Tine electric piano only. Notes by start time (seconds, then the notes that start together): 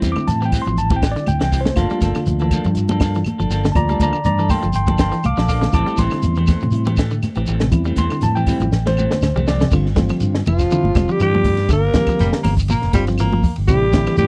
Already playing: G3 C4 E4
0.12 D6
0.28 A5
0.45 G5
0.62 C6
0.78 A5
0.96 G5
1.11 D5
1.28 G5
1.43 G5
1.61 C5
1.75 A3 A#3 F4
3.72 A3 A#3 F4 D5 A5
3.76 A#5
4.02 D5 A#5
4.25 D5 A#5
4.50 G5 C6
4.76 G5 C6
5.00 G5 C6
5.25 F5 D6
5.49 F5 D6
5.73 G3 C4 E4 A5 D6
5.99 C6
6.72 G3 C4 E4
7.70 G3 C4 E4
7.98 C6
8.23 A5
8.35 G5
8.47 G3 C4 E4
8.87 C5
9.48 D5
9.71 D3 G3 C4 F4
9.96 D3 G3 C4 F4
10.70 D3 G3 C4 E4
10.94 D3 G3 C4 F4
11.94 D3 G3 C4 G4
12.94 D3 G3 C4 F4
13.67 D3 G3 C4 E4
13.93 D3 G3 C4 E4